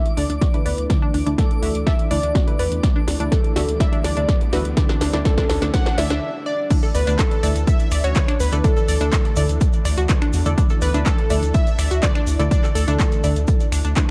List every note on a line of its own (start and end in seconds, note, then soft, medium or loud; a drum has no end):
0.00 6.18 E3 medium
0.00 2.80 A3 medium
0.00 6.18 D4 medium
0.00 0.18 E5 loud
0.00 6.22 D6 medium
0.00 riser medium
0.06 closed hi-hat soft
0.17 0.27 D2 medium
0.17 0.25 D3 medium
0.17 0.25 A3 medium
0.17 0.25 D4 medium
0.17 0.24 D4 medium
0.17 0.25 E4 medium
0.17 0.67 D5 loud
0.17 0.25 D5 medium
0.17 open hi-hat loud
0.30 0.39 D2 medium
0.30 0.36 D4 medium
0.30 closed hi-hat medium
0.41 0.51 F#4 medium
0.41 kick loud
0.41 snare medium
0.41 closed hi-hat medium
0.54 0.61 D3 medium
0.54 0.61 A3 medium
0.54 0.61 D4 medium
0.54 0.61 E4 medium
0.54 0.61 B4 medium
0.54 closed hi-hat soft
0.66 0.75 D2 medium
0.66 0.90 B4 medium
0.66 0.72 D5 medium
0.66 open hi-hat medium
0.78 0.87 D2 medium
0.78 closed hi-hat medium
0.90 1.24 D3 medium
0.90 1.24 A3 medium
0.90 1.24 D4 medium
0.90 1.24 E4 medium
0.90 1.24 D5 medium
0.90 kick loud
0.90 snare medium
0.90 closed hi-hat medium
1.02 1.06 D4 loud
1.14 1.24 D2 medium
1.14 1.20 D4 medium
1.14 open hi-hat loud
1.26 1.36 D2 medium
1.26 1.60 D3 medium
1.26 1.60 A3 medium
1.26 1.60 D4 medium
1.26 1.32 D4 medium
1.26 1.60 E4 medium
1.26 1.60 D5 medium
1.26 closed hi-hat medium
1.38 1.88 A4 loud
1.38 kick loud
1.38 snare medium
1.38 closed hi-hat medium
1.51 closed hi-hat soft
1.62 1.72 D2 medium
1.62 1.74 D3 medium
1.62 1.74 A3 medium
1.62 1.74 D4 medium
1.62 1.74 E4 medium
1.62 1.69 F#4 medium
1.62 1.74 E5 medium
1.62 open hi-hat medium
1.75 1.84 D2 medium
1.75 closed hi-hat medium
1.87 1.90 A4 loud
1.87 2.12 E5 loud
1.87 kick loud
1.87 snare medium
1.87 closed hi-hat medium
1.99 closed hi-hat soft
2.11 2.20 D2 medium
2.11 2.18 D3 medium
2.11 2.18 A3 medium
2.11 2.18 D4 medium
2.11 2.17 D4 medium
2.11 2.18 E4 medium
2.11 2.61 D5 loud
2.11 2.18 D5 medium
2.11 open hi-hat loud
2.23 2.32 D2 medium
2.23 2.29 D4 medium
2.23 closed hi-hat medium
2.35 2.44 F#4 medium
2.35 kick loud
2.35 snare medium
2.35 closed hi-hat medium
2.47 2.54 D3 medium
2.47 2.54 A3 medium
2.47 2.54 D4 medium
2.47 2.54 E4 medium
2.47 2.54 B4 medium
2.47 closed hi-hat soft
2.59 2.69 E2 medium
2.59 2.84 B4 medium
2.59 2.65 D5 medium
2.59 open hi-hat medium
2.72 2.81 E2 medium
2.72 closed hi-hat medium
2.83 3.17 D3 medium
2.83 6.19 G3 medium
2.83 3.17 A3 medium
2.83 3.17 D4 medium
2.83 3.17 E4 medium
2.83 3.17 D5 medium
2.83 kick loud
2.83 snare medium
2.83 closed hi-hat medium
2.96 2.99 D4 loud
3.08 3.17 D2 medium
3.08 3.14 D4 medium
3.08 snare medium
3.08 open hi-hat loud
3.20 3.29 D2 medium
3.20 3.53 D3 medium
3.20 3.53 A3 medium
3.20 3.53 D4 medium
3.20 3.26 D4 medium
3.20 3.53 E4 medium
3.20 3.53 D5 medium
3.20 closed hi-hat medium
3.32 3.82 A4 loud
3.32 kick loud
3.32 snare medium
3.32 closed hi-hat medium
3.44 closed hi-hat soft
3.56 3.65 D2 medium
3.56 3.68 D3 medium
3.56 3.68 A3 medium
3.56 3.68 D4 medium
3.56 3.68 E4 medium
3.56 3.62 F#4 medium
3.56 3.68 E5 medium
3.56 snare medium
3.56 open hi-hat loud
3.68 3.77 D2 medium
3.68 closed hi-hat medium
3.80 4.14 D3 medium
3.80 4.14 A3 medium
3.80 4.14 D4 medium
3.80 4.14 E4 medium
3.80 4.14 D5 medium
3.80 4.06 E5 loud
3.80 kick loud
3.80 snare medium
3.80 closed hi-hat medium
3.92 3.96 D4 medium
3.92 closed hi-hat soft
4.04 4.14 D2 medium
4.04 4.11 D4 medium
4.04 4.55 D5 loud
4.04 snare medium
4.04 open hi-hat loud
4.17 4.26 D2 medium
4.17 4.50 D3 medium
4.17 4.50 A3 medium
4.17 4.23 D4 medium
4.17 4.50 D4 medium
4.17 4.50 E4 medium
4.17 4.50 D5 medium
4.17 closed hi-hat medium
4.29 kick loud
4.29 snare medium
4.29 closed hi-hat medium
4.41 closed hi-hat soft
4.53 4.62 D2 medium
4.53 4.65 D3 medium
4.53 4.65 A3 medium
4.53 4.65 D4 medium
4.53 4.65 E4 medium
4.53 4.59 F#4 medium
4.53 4.77 B4 medium
4.53 4.65 E5 medium
4.53 snare medium
4.53 open hi-hat loud
4.65 4.74 D2 medium
4.65 closed hi-hat medium
4.77 5.11 D3 medium
4.77 5.11 A3 medium
4.77 5.11 D4 medium
4.77 5.11 E4 medium
4.77 5.11 D5 loud
4.77 kick loud
4.77 snare medium
4.77 closed hi-hat medium
4.89 4.93 D4 loud
4.89 snare medium
5.01 5.11 D2 medium
5.01 5.07 D4 medium
5.01 snare loud
5.01 open hi-hat loud
5.13 5.23 D2 medium
5.13 5.23 D3 medium
5.13 5.23 A3 medium
5.13 5.23 D4 medium
5.13 5.19 D4 medium
5.13 5.23 E4 medium
5.13 5.23 D5 medium
5.13 snare medium
5.13 closed hi-hat medium
5.25 5.59 D3 medium
5.25 5.59 A3 medium
5.25 5.59 D4 medium
5.25 5.59 E4 medium
5.25 5.75 A4 loud
5.25 5.59 D5 medium
5.25 kick loud
5.25 snare loud
5.25 closed hi-hat medium
5.38 5.41 D4 loud
5.38 kick medium
5.38 snare medium
5.38 closed hi-hat soft
5.49 5.59 D2 medium
5.49 5.56 D4 medium
5.49 snare loud
5.49 open hi-hat medium
5.62 5.71 D2 medium
5.62 5.72 D3 medium
5.62 5.72 A3 medium
5.62 5.68 D4 medium
5.62 5.72 D4 medium
5.62 5.72 E4 medium
5.62 5.72 D5 loud
5.62 snare medium
5.62 closed hi-hat medium
5.74 5.96 D3 medium
5.74 5.96 A3 medium
5.74 5.96 D4 medium
5.74 5.96 E4 medium
5.74 5.96 D5 loud
5.74 6.00 F#5 loud
5.74 kick loud
5.74 snare loud
5.74 closed hi-hat medium
5.86 5.90 D4 loud
5.86 snare loud
5.86 closed hi-hat soft
5.98 6.07 D2 medium
5.98 6.20 D3 medium
5.98 6.20 A3 medium
5.98 6.20 D4 medium
5.98 6.20 E4 medium
5.98 6.20 D5 loud
5.98 6.48 E5 loud
5.98 snare loud
5.98 open hi-hat loud
6.10 6.19 D2 medium
6.10 6.14 D4 loud
6.10 snare loud
6.10 closed hi-hat medium
6.46 6.70 D5 medium
6.70 7.04 D3 medium
6.70 14.11 E3 medium
6.70 14.11 A3 medium
6.70 7.04 A3 medium
6.70 6.80 D4 medium
6.70 7.04 D4 medium
6.70 14.11 D4 medium
6.70 7.04 E4 medium
6.70 7.04 D5 medium
6.70 kick loud
6.70 closed hi-hat medium
6.70 crash loud
6.70 tambourine medium
6.70 shaker medium
6.82 6.86 A4 medium
6.82 snare medium
6.82 shaker soft
6.95 7.04 D2 loud
6.95 7.21 B4 loud
6.95 7.17 B4 medium
6.95 7.01 D5 loud
6.95 open hi-hat loud
6.95 tambourine medium
6.95 shaker medium
7.07 7.16 D2 medium
7.07 7.40 D3 medium
7.07 7.40 A3 medium
7.07 7.13 D4 loud
7.07 7.40 D4 medium
7.07 7.40 E4 medium
7.07 7.40 D5 medium
7.07 closed hi-hat medium
7.07 shaker soft
7.19 7.67 A4 loud
7.19 7.64 A4 loud
7.19 kick loud
7.19 snare loud
7.19 clap loud
7.19 closed hi-hat medium
7.19 tambourine medium
7.19 shaker medium
7.31 snare soft
7.31 closed hi-hat soft
7.43 7.53 D2 medium
7.43 7.55 D3 medium
7.43 7.55 A3 medium
7.43 7.55 D4 medium
7.43 7.55 E4 medium
7.43 7.47 D5 loud
7.43 7.55 E5 medium
7.43 snare medium
7.43 open hi-hat medium
7.43 tambourine medium
7.43 shaker medium
7.56 7.65 D2 medium
7.56 snare soft
7.56 closed hi-hat medium
7.56 shaker soft
7.67 8.06 E5 loud
7.67 8.02 E5 loud
7.67 kick loud
7.67 closed hi-hat medium
7.67 tambourine medium
7.67 shaker medium
7.79 closed hi-hat soft
7.79 shaker soft
7.91 8.01 D2 medium
7.91 7.98 D5 loud
7.91 finger snap medium
7.91 open hi-hat loud
7.91 tambourine medium
7.91 shaker medium
8.03 8.13 D2 medium
8.03 8.10 F#4 loud
8.03 8.37 C#5 loud
8.03 8.42 C#5 loud
8.03 closed hi-hat medium
8.03 shaker soft
8.15 8.23 D3 medium
8.15 8.23 A3 medium
8.15 8.23 D4 medium
8.15 8.23 E4 medium
8.15 8.23 B4 medium
8.15 kick loud
8.15 snare loud
8.15 clap loud
8.15 closed hi-hat medium
8.15 tambourine medium
8.15 shaker medium
8.28 8.32 D4 loud
8.28 finger snap medium
8.28 closed hi-hat soft
8.40 8.49 D2 medium
8.40 8.62 B4 medium
8.40 8.66 B4 loud
8.40 open hi-hat medium
8.40 tambourine medium
8.40 shaker loud
8.52 8.61 D2 medium
8.52 8.62 D3 medium
8.52 8.62 A3 medium
8.52 8.62 D4 medium
8.52 8.62 E4 medium
8.52 8.56 A4 medium
8.52 8.62 D5 loud
8.52 snare soft
8.52 closed hi-hat medium
8.52 shaker soft
8.64 8.98 D3 medium
8.64 8.98 A3 medium
8.64 8.98 D4 medium
8.64 8.73 D4 medium
8.64 8.98 E4 medium
8.64 10.05 A4 loud
8.64 10.09 A4 loud
8.64 8.98 D5 loud
8.64 kick loud
8.64 closed hi-hat medium
8.64 tambourine medium
8.64 shaker medium
8.77 8.80 A4 medium
8.77 snare soft
8.77 shaker soft
8.88 8.98 D2 medium
8.88 8.95 D5 loud
8.88 open hi-hat loud
8.88 tambourine medium
8.88 shaker medium
9.00 9.10 D2 medium
9.00 9.34 D3 medium
9.00 9.34 A3 medium
9.00 9.34 D4 medium
9.00 9.07 D4 loud
9.00 9.34 E4 medium
9.00 9.34 D5 loud
9.00 closed hi-hat medium
9.00 shaker soft
9.12 kick loud
9.12 snare loud
9.12 clap loud
9.12 closed hi-hat medium
9.12 tambourine medium
9.12 shaker medium
9.25 snare medium
9.25 closed hi-hat soft
9.36 9.46 D2 medium
9.36 9.49 D3 medium
9.36 9.48 A3 medium
9.36 9.49 D4 medium
9.36 9.49 E4 medium
9.36 9.40 D5 loud
9.36 9.49 E5 medium
9.36 open hi-hat loud
9.36 tambourine medium
9.36 shaker loud
9.49 9.58 D2 medium
9.49 closed hi-hat medium
9.49 shaker soft
9.61 kick loud
9.61 closed hi-hat medium
9.61 tambourine medium
9.61 shaker medium
9.73 closed hi-hat soft
9.73 shaker soft
9.85 9.95 D2 medium
9.85 9.91 D5 loud
9.85 finger snap medium
9.85 snare soft
9.85 open hi-hat loud
9.85 tambourine medium
9.85 shaker loud
9.97 10.07 D2 medium
9.97 10.03 F#4 loud
9.97 snare medium
9.97 closed hi-hat medium
9.97 shaker soft
10.09 10.17 D3 medium
10.09 10.17 A3 medium
10.09 10.17 D4 medium
10.09 10.17 E4 medium
10.09 10.17 B4 medium
10.09 kick loud
10.09 snare loud
10.09 clap loud
10.09 closed hi-hat medium
10.09 tambourine medium
10.09 shaker medium
10.22 10.25 D4 loud
10.22 finger snap medium
10.22 closed hi-hat soft
10.33 10.43 E2 loud
10.33 snare medium
10.33 open hi-hat medium
10.33 shaker loud
10.45 10.55 E2 medium
10.45 10.56 D3 medium
10.45 10.56 A3 medium
10.45 10.56 D4 medium
10.45 10.56 E4 medium
10.45 10.49 A4 medium
10.45 10.56 D5 loud
10.45 closed hi-hat soft
10.45 closed hi-hat medium
10.45 shaker soft
10.58 10.91 D3 medium
10.58 10.91 A3 medium
10.58 10.91 D4 medium
10.58 10.67 D4 medium
10.58 10.91 E4 medium
10.58 10.91 D5 medium
10.58 kick loud
10.58 closed hi-hat medium
10.58 tambourine medium
10.58 shaker medium
10.69 10.74 A4 medium
10.69 snare medium
10.69 shaker soft
10.81 10.91 D2 loud
10.81 11.08 B4 loud
10.81 11.05 B4 loud
10.81 10.88 D5 loud
10.81 open hi-hat loud
10.81 tambourine medium
10.81 shaker loud
10.94 11.03 D2 medium
10.94 11.27 D3 medium
10.94 11.27 A3 medium
10.94 11.27 D4 medium
10.94 11.00 D4 loud
10.94 11.27 E4 medium
10.94 11.27 D5 loud
10.94 closed hi-hat medium
10.94 shaker soft
11.06 11.51 A4 loud
11.06 11.56 A4 loud
11.06 kick loud
11.06 snare loud
11.06 clap loud
11.06 closed hi-hat medium
11.06 tambourine medium
11.06 shaker medium
11.18 snare soft
11.18 closed hi-hat soft
11.30 11.40 D2 loud
11.30 11.42 D3 medium
11.30 11.42 A3 medium
11.30 11.42 D4 medium
11.30 11.42 E4 medium
11.30 11.34 D5 loud
11.30 11.42 E5 medium
11.30 snare medium
11.30 open hi-hat loud
11.30 tambourine medium
11.30 shaker medium
11.43 11.52 D2 medium
11.43 snare soft
11.43 closed hi-hat medium
11.43 shaker soft
11.54 12.04 E5 loud
11.54 11.99 E5 loud
11.54 kick loud
11.54 closed hi-hat medium
11.54 tambourine medium
11.54 shaker medium
11.67 closed hi-hat soft
11.67 shaker soft
11.79 11.88 D2 loud
11.79 11.85 D5 loud
11.79 finger snap medium
11.79 open hi-hat loud
11.79 tambourine medium
11.79 shaker medium
11.91 12.00 D2 medium
11.91 11.97 F#4 loud
11.91 closed hi-hat medium
11.91 shaker soft
12.03 12.10 D3 medium
12.03 12.10 A3 medium
12.03 12.10 D4 medium
12.03 12.10 E4 medium
12.03 12.10 B4 medium
12.03 12.48 D5 loud
12.03 12.51 D5 loud
12.03 kick loud
12.03 snare loud
12.03 clap loud
12.03 closed hi-hat medium
12.03 tambourine medium
12.03 shaker medium
12.15 12.19 D4 loud
12.15 finger snap medium
12.15 closed hi-hat soft
12.27 12.36 D2 medium
12.27 open hi-hat medium
12.27 tambourine medium
12.27 shaker loud
12.39 12.48 D2 medium
12.39 12.49 D3 loud
12.39 12.49 A3 medium
12.39 12.49 D4 medium
12.39 12.49 E4 medium
12.39 12.43 A4 medium
12.39 12.49 D5 loud
12.39 snare soft
12.39 closed hi-hat medium
12.39 shaker soft
12.51 12.85 D3 medium
12.51 12.85 A3 medium
12.51 12.60 D4 medium
12.51 12.85 D4 medium
12.51 12.74 D5 loud
12.51 12.77 D5 loud
12.51 12.85 D5 loud
12.51 kick loud
12.51 closed hi-hat medium
12.51 tambourine medium
12.51 shaker medium
12.64 12.67 A4 medium
12.64 snare soft
12.64 clap soft
12.64 shaker soft
12.75 12.85 D2 medium
12.75 13.72 A4 loud
12.75 13.68 A4 medium
12.75 12.81 D5 loud
12.75 open hi-hat loud
12.75 tambourine medium
12.75 shaker loud
12.88 12.97 D2 medium
12.88 13.21 D3 medium
12.88 13.21 A3 medium
12.88 12.94 D4 loud
12.88 13.21 D4 medium
12.88 13.21 E4 medium
12.88 13.21 D5 medium
12.88 closed hi-hat medium
12.88 shaker soft
13.00 kick loud
13.00 snare loud
13.00 clap loud
13.00 closed hi-hat medium
13.00 tambourine medium
13.00 shaker medium
13.12 snare medium
13.12 closed hi-hat soft
13.12 shaker soft
13.24 13.33 D2 loud
13.24 13.36 D3 medium
13.24 13.36 A3 medium
13.24 13.36 D4 medium
13.24 13.36 E4 medium
13.24 13.27 D5 loud
13.24 13.36 E5 medium
13.24 open hi-hat loud
13.24 tambourine medium
13.24 shaker medium
13.36 13.45 D2 medium
13.36 closed hi-hat medium
13.36 shaker soft
13.47 kick loud
13.47 closed hi-hat medium
13.47 tambourine medium
13.47 shaker medium
13.60 closed hi-hat soft
13.60 shaker soft
13.72 13.82 D2 loud
13.72 13.78 D4 medium
13.72 finger snap medium
13.72 snare soft
13.72 open hi-hat loud
13.72 tambourine medium
13.72 shaker loud
13.84 13.94 D2 medium
13.84 13.88 D4 medium
13.84 snare medium
13.84 closed hi-hat soft
13.84 shaker soft
13.96 14.04 D3 medium
13.96 14.04 A3 medium
13.96 14.04 D4 medium
13.96 14.06 D4 medium
13.96 14.04 E4 medium
13.96 14.04 B4 medium
13.96 kick loud
13.96 snare loud
13.96 clap loud
13.96 closed hi-hat medium
13.96 tambourine loud
13.96 shaker medium